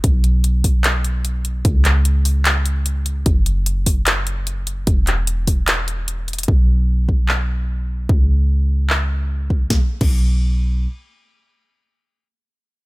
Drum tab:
CC |--------------------------------|--------------------------------|--------------------------------|--------------------------------|
HH |x---x---x---o---x---x---x---x---|x---x---x---o---x---x---x---x---|x---x---x---o---x---x---x---x---|x---x---x---o---x---x---x---xxxx|
CP |----------------x---------------|----x-----------x---------------|----------------x---------------|----x-----------x---------------|
SD |--------------------------------|--------------------------------|--------------------------------|--------------------------------|
BD |o-----------o-------------------|o-------------------------------|o-----------o-------------------|o-----------o-------------------|

CC |--------------------------------|--------------------------------|------x-------------------------|--------------------------------|
HH |--------------------------------|--------------------------------|--------------------------------|--------------------------------|
CP |----------------x---------------|----------------x---------------|--------------------------------|--------------------------------|
SD |--------------------------------|--------------------------------|o-------------------------------|--------------------------------|
BD |o-----------o-------------------|o---------------------------o---|o-----o-------------------------|--------------------------------|